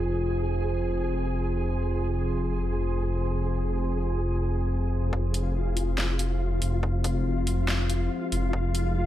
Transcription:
0.00 5.11 F1 medium
0.00 5.09 F4 medium
0.00 5.14 G#4 medium
0.00 5.09 C5 medium
0.00 5.11 C6 medium
5.13 5.96 F1 medium
5.13 9.06 F4 medium
5.13 9.06 G#4 medium
5.13 8.52 C5 medium
5.13 kick loud
5.34 closed hi-hat medium
5.77 closed hi-hat medium
5.98 6.60 F1 medium
5.98 snare loud
6.19 closed hi-hat medium
6.62 7.24 F1 loud
6.62 closed hi-hat medium
6.83 kick loud
7.04 kick loud
7.04 closed hi-hat medium
7.26 8.09 F1 medium
7.47 closed hi-hat medium
7.68 snare loud
7.90 closed hi-hat medium
8.32 8.52 F1 loud
8.32 closed hi-hat medium
8.53 9.06 F1 medium
8.53 9.06 D#5 medium
8.53 kick loud
8.75 closed hi-hat medium

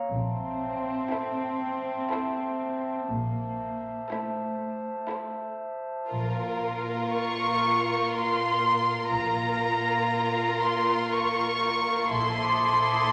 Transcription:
0.09 0.92 A#1 soft
0.09 3.07 C4 medium
0.09 3.10 C5 soft
0.09 3.11 E5 soft
0.09 3.11 A5 soft
1.11 1.87 E4 soft
1.11 1.88 A4 soft
1.11 1.87 C5 soft
2.11 2.87 E4 soft
2.11 2.88 A4 soft
2.11 2.87 C5 soft
3.11 3.92 A#1 soft
3.11 4.11 A#3 soft
3.11 6.08 C5 soft
3.11 6.08 E5 soft
3.11 6.08 A5 soft
4.12 5.11 A3 soft
4.12 4.87 E4 soft
4.12 4.88 A4 soft
4.12 4.88 C5 soft
5.10 5.86 E4 soft
5.10 5.87 A4 soft
5.10 5.88 C5 soft
6.10 7.07 A#1 soft
6.10 9.07 A#2 soft
6.10 9.07 F4 soft
6.10 9.07 A#4 soft
6.10 9.08 A#4 soft
6.10 9.08 F5 soft
6.10 9.08 A#5 soft
7.11 8.07 C#6 soft
8.11 9.11 C6 soft
9.10 10.07 A#1 soft
9.10 12.07 A#2 soft
9.10 12.07 F4 soft
9.10 12.08 A#4 soft
9.10 12.08 F5 soft
9.10 10.58 A#5 soft
9.10 12.08 A#5 soft
10.60 11.11 C6 soft
11.11 12.11 C#6 soft
12.11 13.08 A#1 soft
12.11 13.12 A#2 soft
12.11 13.12 E4 soft
12.11 13.12 A4 soft
12.11 13.12 C5 soft
12.11 13.12 E5 soft
12.11 13.12 A5 soft
12.11 13.12 C6 medium
12.11 13.12 C6 soft
12.11 13.12 D6 soft
12.11 13.12 D#6 soft

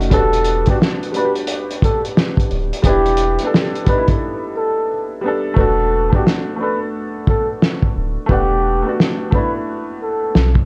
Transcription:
0.00 0.10 F1 medium
0.00 0.14 A3 medium
0.00 0.13 C#4 medium
0.00 0.13 D#4 medium
0.00 0.13 F#4 loud
0.00 closed hi-hat soft
0.10 0.65 E1 loud
0.10 0.50 G3 medium
0.10 0.51 B3 medium
0.10 0.65 A4 loud
0.10 kick loud
0.10 closed hi-hat medium
0.14 0.52 D4 medium
0.14 0.53 F#4 loud
0.33 closed hi-hat medium
0.44 closed hi-hat medium
0.66 1.04 G3 medium
0.66 1.05 B3 medium
0.66 kick medium
0.66 closed hi-hat soft
0.70 1.06 D4 medium
0.70 1.07 F#4 medium
0.70 0.79 G4 medium
0.82 snare loud
1.03 closed hi-hat soft
1.12 2.15 G3 medium
1.12 2.16 B3 medium
1.12 closed hi-hat medium
1.16 2.17 D4 medium
1.16 1.24 F#4 medium
1.16 1.35 B4 medium
1.25 2.21 G4 medium
1.35 closed hi-hat soft
1.47 closed hi-hat medium
1.71 closed hi-hat soft
1.82 2.03 A4 medium
1.82 kick loud
1.82 closed hi-hat medium
2.05 closed hi-hat soft
2.17 snare loud
2.37 kick medium
2.37 closed hi-hat soft
2.51 2.72 D1 loud
2.51 closed hi-hat medium
2.73 closed hi-hat medium
2.82 3.38 E1 loud
2.82 3.23 G3 medium
2.82 3.24 B3 medium
2.82 3.49 G4 loud
2.82 kick loud
2.82 closed hi-hat medium
2.87 3.25 D4 medium
2.87 3.26 E4 medium
3.06 closed hi-hat medium
3.17 closed hi-hat medium
3.39 3.77 G3 medium
3.39 3.78 B3 medium
3.39 closed hi-hat soft
3.44 3.79 D4 medium
3.44 3.81 A4 medium
3.54 snare loud
3.75 closed hi-hat soft
3.85 4.88 G3 medium
3.85 4.89 B3 medium
3.85 4.07 B4 medium
3.85 kick medium
3.85 closed hi-hat medium
3.89 4.90 D4 medium
3.89 3.97 D#4 medium
3.98 4.94 E4 medium
4.08 kick medium
4.08 closed hi-hat soft
4.57 5.09 A4 medium
5.21 5.50 G3 medium
5.21 5.51 B3 medium
5.26 5.52 D4 medium
5.26 5.53 A4 medium
5.54 6.10 E1 loud
5.54 5.95 A3 medium
5.54 5.96 B3 medium
5.54 kick loud
5.58 5.97 D4 medium
5.58 5.98 F#4 loud
5.58 6.11 A4 loud
6.10 6.48 A3 medium
6.10 6.50 B3 medium
6.10 kick medium
6.14 6.51 D4 medium
6.14 6.52 F#4 medium
6.14 6.25 G4 medium
6.27 snare loud
6.56 7.60 A3 medium
6.56 7.61 B3 medium
6.61 7.62 D4 medium
6.61 7.63 A4 medium
6.61 6.80 B4 medium
7.27 7.48 A4 medium
7.27 kick medium
7.62 snare loud
7.83 kick medium
7.97 8.17 D1 medium
8.26 8.83 E1 loud
8.26 8.68 A3 medium
8.26 8.69 B3 medium
8.26 kick loud
8.31 8.70 D4 medium
8.31 8.95 G4 medium
8.31 8.71 F#5 medium
8.82 9.21 A3 medium
8.82 9.22 B3 medium
8.87 9.23 D4 medium
8.87 9.24 F#4 medium
9.00 snare loud
9.31 10.33 A3 medium
9.31 10.35 B3 medium
9.31 9.53 B4 medium
9.31 kick medium
9.35 10.36 D4 medium
9.35 10.37 E4 medium
10.02 10.54 A4 medium
10.35 10.65 B1 loud
10.35 snare loud
10.55 kick medium

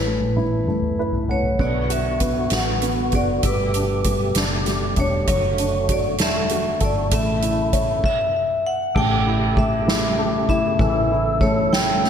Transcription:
0.00 1.56 A1 medium
0.00 1.56 E3 medium
0.00 0.06 A3 soft
0.00 0.36 E4 soft
0.00 1.27 B4 medium
0.06 0.66 A3 soft
0.21 high tom soft
0.36 0.98 E4 soft
0.36 high tom medium
0.67 1.28 A3 soft
0.67 mid tom medium
0.82 mid tom medium
0.99 1.59 E4 soft
0.99 1.28 B4 medium
1.13 floor tom medium
1.28 1.59 A3 soft
1.28 1.62 C#5 medium
1.28 1.58 F#5 soft
1.28 floor tom medium
1.43 floor tom medium
1.59 2.48 B1 medium
1.59 3.43 D3 soft
1.59 2.19 B3 medium
1.59 3.42 B3 soft
1.59 3.42 F#4 medium
1.59 1.75 D5 medium
1.59 kick medium
1.59 crash medium
1.90 2.51 F#4 soft
1.90 2.54 E5 medium
1.90 closed hi-hat soft
2.20 2.81 B3 soft
2.20 kick medium
2.20 closed hi-hat soft
2.50 3.09 A1 medium
2.50 3.12 F#4 soft
2.50 snare medium
2.50 closed hi-hat medium
2.54 3.11 F#5 medium
2.82 3.42 B3 soft
2.82 closed hi-hat soft
3.12 3.42 F#1 medium
3.12 3.44 F#4 soft
3.12 3.43 D5 medium
3.12 kick medium
3.12 closed hi-hat soft
3.43 4.32 G1 medium
3.43 5.27 B2 medium
3.43 4.05 G3 medium
3.43 8.00 A3 medium
3.43 5.27 G4 medium
3.43 4.33 B4 medium
3.43 kick medium
3.43 closed hi-hat medium
3.74 4.35 D4 soft
3.74 closed hi-hat soft
4.04 4.66 G3 soft
4.04 kick medium
4.04 closed hi-hat soft
4.35 4.94 F#1 medium
4.35 4.96 D4 medium
4.35 snare medium
4.35 closed hi-hat medium
4.66 5.27 G3 soft
4.66 snare soft
4.66 closed hi-hat soft
4.96 5.26 E1 medium
4.96 5.28 D4 soft
4.96 5.93 C#5 medium
4.96 kick medium
4.96 closed hi-hat soft
5.27 6.20 F#1 medium
5.27 7.10 D3 medium
5.27 7.08 F#3 medium
5.27 7.10 F#4 medium
5.27 kick medium
5.27 closed hi-hat medium
5.58 6.78 D4 soft
5.58 closed hi-hat soft
5.89 6.49 F#4 soft
5.89 6.05 D5 medium
5.89 kick medium
5.89 closed hi-hat medium
6.18 6.78 E1 medium
6.18 6.79 A4 medium
6.18 6.79 E5 medium
6.18 snare medium
6.18 closed hi-hat medium
6.49 7.10 F#4 medium
6.49 closed hi-hat soft
6.80 7.10 G1 medium
6.80 7.11 A4 medium
6.80 kick medium
6.80 closed hi-hat soft
6.84 7.15 D5 medium
7.11 8.00 A1 medium
7.11 8.04 C#3 medium
7.11 8.01 A3 medium
7.11 8.04 E4 medium
7.11 8.04 E5 medium
7.11 kick medium
7.11 closed hi-hat medium
7.42 8.02 E4 soft
7.42 closed hi-hat soft
7.73 8.03 C#5 soft
7.73 kick medium
7.73 closed hi-hat medium
8.04 8.68 E5 medium
8.04 kick medium
8.04 crash medium
8.66 8.97 F#5 medium
8.95 10.49 A1 medium
8.95 12.10 C#3 medium
8.95 12.10 A3 medium
8.95 9.56 A3 medium
8.95 10.77 G4 medium
8.95 9.60 G5 medium
8.95 kick loud
8.95 crash medium
9.27 9.86 E4 soft
9.27 ride soft
9.57 10.17 A3 soft
9.57 10.46 E5 medium
9.57 kick medium
9.57 ride soft
9.87 10.48 E4 medium
9.87 snare loud
9.87 ride medium
10.18 11.37 A3 medium
10.18 ride soft
10.49 10.78 G1 medium
10.49 11.10 E4 medium
10.49 11.44 E5 medium
10.49 kick medium
10.79 12.10 A1 loud
10.79 12.10 E3 medium
10.79 12.10 A4 medium
10.79 kick loud
10.79 ride medium
11.10 11.71 E4 medium
11.10 ride soft
11.41 12.02 A3 medium
11.41 11.73 C#5 medium
11.41 kick medium
11.41 ride soft
11.71 12.10 E4 medium
11.71 12.10 G5 loud
11.71 snare loud
11.71 ride medium
12.03 12.10 A3 medium
12.03 snare soft
12.03 ride soft

